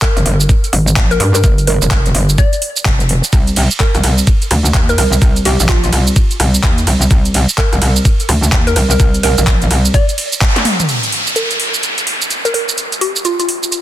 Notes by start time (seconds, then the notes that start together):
0.02 A#4, kick, clap, closed hi-hat, shaker
0.17 G1, closed hi-hat, shaker
0.26 G1, open hi-hat
0.40 shaker
0.49 kick, closed hi-hat, shaker
0.64 closed hi-hat, shaker
0.73 G#1, open hi-hat
0.88 closed hi-hat, shaker
0.96 kick, clap, closed hi-hat, shaker
1.11 A#4, closed hi-hat, shaker
1.20 G2 A#4, open hi-hat
1.35 A#4, closed hi-hat, shaker
1.44 G1, kick, closed hi-hat, shaker
1.58 closed hi-hat, shaker
1.67 A#4, open hi-hat
1.82 F1, shaker
1.91 kick, clap, closed hi-hat, shaker
2.06 closed hi-hat, shaker
2.15 G1, open hi-hat
2.29 shaker
2.38 D5, kick, closed hi-hat, shaker
2.53 closed hi-hat, shaker
2.62 open hi-hat
2.76 closed hi-hat, shaker
2.85 F1, kick, clap, closed hi-hat, shaker
3.00 closed hi-hat, shaker
3.09 open hi-hat
3.24 closed hi-hat, shaker
3.33 C2, kick, closed hi-hat, ride, shaker
3.47 closed hi-hat, shaker
3.56 open hi-hat, ride
3.71 shaker
3.80 A#4, kick, clap, closed hi-hat, shaker
3.95 C2, closed hi-hat, shaker
4.04 C2, open hi-hat, ride
4.18 shaker
4.27 kick, closed hi-hat, ride, shaker
4.42 closed hi-hat, shaker
4.51 D2, open hi-hat, ride
4.65 closed hi-hat, shaker
4.74 D#2, kick, clap, closed hi-hat, ride, shaker
4.89 A#4, closed hi-hat, shaker
4.98 C2 A#4, open hi-hat, ride
5.13 closed hi-hat, shaker
5.22 C2, kick, closed hi-hat, ride, shaker
5.36 closed hi-hat, shaker
5.45 G4, open hi-hat, ride
5.60 A#1, shaker
5.69 F4, kick, clap, closed hi-hat
5.84 F4, closed hi-hat, shaker
5.93 C2, open hi-hat, ride
6.07 shaker
6.16 kick, closed hi-hat, ride, shaker
6.31 closed hi-hat, shaker
6.40 C2, open hi-hat, ride
6.54 closed hi-hat, shaker
6.63 D#2, kick, clap, closed hi-hat, shaker
6.78 closed hi-hat, shaker
6.87 C2, open hi-hat, ride
7.02 closed hi-hat, shaker
7.11 C2, kick, closed hi-hat, ride, shaker
7.25 closed hi-hat, shaker
7.34 open hi-hat, ride
7.49 shaker
7.58 A#4, kick, clap, closed hi-hat, ride, shaker
7.73 C2, closed hi-hat, shaker
7.82 C2, open hi-hat, ride
7.96 shaker
8.05 kick, closed hi-hat, ride, shaker
8.20 closed hi-hat, shaker
8.29 D2, open hi-hat, ride
8.43 closed hi-hat, shaker
8.52 D#2, kick, clap, closed hi-hat, shaker
8.67 A#4, closed hi-hat, shaker
8.76 C2 A#4, open hi-hat, ride
8.91 A#4, closed hi-hat, shaker
9.00 C2, kick, closed hi-hat, ride, shaker
9.14 closed hi-hat, shaker
9.23 A#4, open hi-hat, ride
9.38 A#1, closed hi-hat, shaker
9.47 kick, clap, closed hi-hat, shaker
9.62 closed hi-hat, shaker
9.71 C2, open hi-hat, ride
9.85 closed hi-hat, shaker
9.94 D5, kick, closed hi-hat, ride, shaker
10.09 closed hi-hat, shaker
10.18 open hi-hat, ride
10.33 closed hi-hat, shaker
10.41 kick, clap, closed hi-hat, shaker
10.56 snare, closed hi-hat, shaker
10.65 open hi-hat, mid tom, ride
10.80 closed hi-hat, mid tom, shaker
10.89 closed hi-hat, downlifter, shaker
11.03 closed hi-hat, shaker
11.12 open hi-hat
11.27 shaker
11.36 A#4, closed hi-hat, shaker
11.51 closed hi-hat, shaker
11.60 open hi-hat
11.74 shaker
11.83 closed hi-hat, shaker
11.98 closed hi-hat, shaker
12.07 open hi-hat
12.22 closed hi-hat, shaker
12.31 closed hi-hat, shaker
12.45 A#4, closed hi-hat, shaker
12.54 A#4, open hi-hat
12.69 closed hi-hat, shaker
12.78 closed hi-hat, shaker
12.92 closed hi-hat, shaker
13.01 G4, open hi-hat
13.16 shaker
13.25 F4, closed hi-hat, shaker
13.39 F4, closed hi-hat, shaker
13.49 open hi-hat
13.63 shaker
13.72 closed hi-hat, shaker